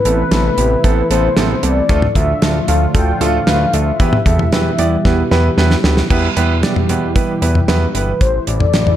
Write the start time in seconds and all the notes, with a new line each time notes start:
Already playing: C3 E3 A3 E4
0.05 A1 B3 C4 E4 A4 B4, closed hi-hat
0.31 A1 B3 C4 E4 A4, snare, closed hi-hat
0.58 A1 B3 C4 E4 G4, closed hi-hat
0.84 A1 B3 C4 E4 A4, kick, closed hi-hat
1.10 A1 B3 C4 E4 A4 C5, closed hi-hat
1.37 A1 B3 C4 E4 A4, snare, closed hi-hat
1.63 C2 B3 C4 E4 A4 D5, closed hi-hat
1.89 D2 A2 D3 F3 A3 D4 F4 A4, kick, closed hi-hat
2.02 mid tom
2.15 D2 A3 D4 F4 A4 E5, kick, closed hi-hat
2.42 D2 A3 D4 F4 A4, snare, closed hi-hat
2.68 D2 A3 D4 F4 A4 F5, closed hi-hat
2.95 D2 A3 D4 F4 A4 G5, kick, closed hi-hat
3.21 D2 A3 D4 F4 A4 F5, closed hi-hat
3.47 D2 A3 D4 F4 B4, snare, closed hi-hat
3.73 D2 A3 D4 F4 A4 E5, closed hi-hat
4.00 E2 B2 E3 G3 B3 E4 G4 B4, kick, closed hi-hat
4.13 mid tom
4.26 E2 B3 E4 G4 A4, kick, closed hi-hat
4.39 mid tom
4.52 E2 B3 E4 G4 B4, snare, closed hi-hat
4.79 E2 B3 E4 G4 D5, closed hi-hat
5.05 E2 B3 E4 G4 B4, kick, snare
5.31 E2 B3 E4 G4 B4, snare
5.57 E2 B3 E4 G4 B4, snare
5.71 snare
5.84 D2 B3 E4 G4 B4, snare
5.97 snare
6.10 E2 B2 E3 G3 B3 E4 G4 B4, kick, crash
6.37 E2 B3 E4 G4 B4, closed hi-hat
6.63 B3 E4 G4 D5, snare, closed hi-hat
6.76 mid tom
6.89 E2 B3 E4 G4 B4, closed hi-hat
7.16 B3 E4 G4 B4, kick, closed hi-hat
7.42 E2 B3 E4 G4 B4, closed hi-hat
7.55 mid tom
7.68 E2 B3 E4 G4 B4, snare, closed hi-hat
7.95 G1 B3 E4 G4 B4, closed hi-hat
8.08 B4
8.21 A1 C3 E3 A3 E4 A4 C5, kick, closed hi-hat
8.47 A1 D5, closed hi-hat
8.60 mid tom
8.73 A1, snare, closed hi-hat
8.87 mid tom